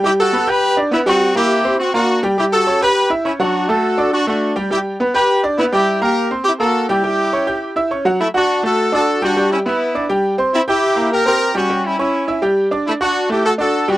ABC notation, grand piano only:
X:1
M:4/4
L:1/8
Q:1/4=206
K:D
V:1 name="Grand piano"
[G,Gg]2 [B,Bb] [Ggg']2 [Ddd'] [B,Bb] [G,Gg]- | [G,Gg] [_B,_B_b]2 [=C=c=c']2 [B,Bb]2 [G,Gg] | [G,Gg]2 [Ccc'] [Ggg']2 [Eee'] [Ccc'] [F,Ff]- | [F,Ff] [A,Aa]2 [Ddd']2 [A,Aa]2 [G,Gg] |
[G,Gg]2 [B,Bb] [Ggg']2 [Ddd'] [B,Bb] [G,Gg]- | [G,Gg] [_B,_B_b]2 [=C=c=c']2 [B,Bb]2 [G,Gg] | [G,Gg]2 [Ccc'] [Ggg']2 [Eee'] [Ccc'] [F,Ff] | z [Fff']2 [A,Aa]2 [Ddd']2 [G,Gg] |
[G,Gg]2 [B,Bb]2 [Ddd'] [G,Gg]2 [=C=c=c']- | [=C=c=c'] [Ggg']2 [_B,_B_b]2 [Ccc']2 [G,Gg] | [G,Gg]2 [Ccc']2 [Eee'] [G,Gg]2 [Ddd']- | [Ddd'] [Fff']2 [A,Aa]2 [Ddd']2 [G,Gg] |]